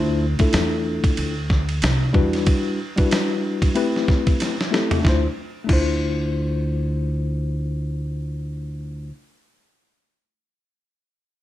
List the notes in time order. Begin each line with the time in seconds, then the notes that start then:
Already playing: D2 A3 D4 E4 F4 C5
0.39 A3 D4 E4 F4 A4, muted upright bass stroke, kick, ride
0.53 E2, snare, hi-hat pedal, ride
1.04 muted upright bass stroke, kick, ride
1.17 D2, ride
1.50 kick, snare
1.69 ride
1.82 C2, snare, hi-hat pedal, ride
2.13 E2 G3 D4 E4 F#4 B4, kick
2.33 snare, ride
2.47 kick, ride
2.96 G3 D4 E4 F#4 B4, kick, ride
3.11 snare, hi-hat pedal, ride
3.62 kick, ride
3.75 A3 C4 E4 G4 B4, ride
3.96 snare
4.08 kick, snare
4.27 kick, ride
4.40 snare, hi-hat pedal, ride
4.61 snare
4.71 A3 C4 E4 G4 A4, snare
4.91 floor tom, ride
5.00 A3 D4
5.04 D2 E4 F4, kick, snare
5.09 C5
5.64 A3 D4
5.69 D2 E4 F4, kick, crash
5.73 C5